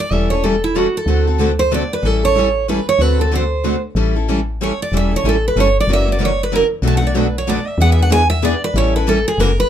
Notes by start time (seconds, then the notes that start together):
0.00 D5
0.11 E1 E3 G3 C#4 E4 A4 E5
0.30 C#4 E4 A4 C#5
0.44 E3 G3 C#4 E4 A4
0.64 E4
0.76 E3 G3 C#4 E4 F#4 A4
0.97 A4
1.06 D2 D3 A3 C4 F#4 A4
1.27 C4 F#4 A4
1.39 D3 A3 C4 F#4 A4
1.59 C5
1.72 D3 A3 C4 F#4 A4 D5
1.93 B4
2.03 A1 E3 G3 C#4 E4 A4
2.23 C#4 E4 A4 C#5
2.37 E3 G3 C#4 E4 A4
2.68 E3 G3 C#4 E4 A4 B4
2.89 C#5
2.99 D2 D3 A3 C4 F#4 A4 B4
3.19 C4 F#4 A4
3.32 D3 A3 C4 F#4 A4 C5
3.64 D3 A3 C4 F#4 A4
3.95 A1 E3 G3 C#4 E4 A4
4.16 C#4 E4 A4
4.28 E3 G3 C#4 E4 A4
4.61 E3 G3 C#4 E4 A4 C#5
4.82 D5
4.92 E1 E3 G3 C#4 E4 A4
4.97 E5
5.11 C#4 E4 A4
5.16 C#5
5.24 A1 E3 G3 C#4 E4 A4
5.29 A4
5.48 B4
5.56 G1 E3 G3 C#4 E4 A4
5.60 C#5
5.80 D5
5.87 F#1 C#3 E3 F#3 A#3 C#4 E4 F#4 A#4
5.93 E5
6.07 A#3 C#4 F#4
6.12 D5
6.19 C#3 E3 F#3 A#3 C#4 E4 F#4 A#4
6.25 C#5
6.43 B4
6.51 C#3 E3 F#3 A#3 C#4 E4 F#4 A#4
6.56 A#4
6.82 B1 B2 F#3 A3 D4 F#4 B4
6.87 A5
6.97 F#5
7.02 A3 D4 F#4
7.07 D5
7.14 B2 F#3 A3 D4 F#4 B4
7.38 C#5
7.47 B2 F#3 A3 D4 F#4 B4 D5
7.67 E5
7.78 E2 E3 B3 D4 G#4 F#5
7.82 B4
7.92 E5
7.98 B3 D4 G#4 F#5
8.10 E3 B3 D4 G#4 B4 G#5
8.30 E5
8.42 E3 B3 D4 G#4 B4 D5
8.64 B4
8.74 A1 E3 G3 C#4 E4 A4 C#5
8.96 C#4 E4 A4 B4
9.07 E3 G3 C#4 E4 A4
9.28 G#4
9.38 F#1 C#3 E3 F#3 A#3 C#4 E4 F#4 A#4
9.60 B4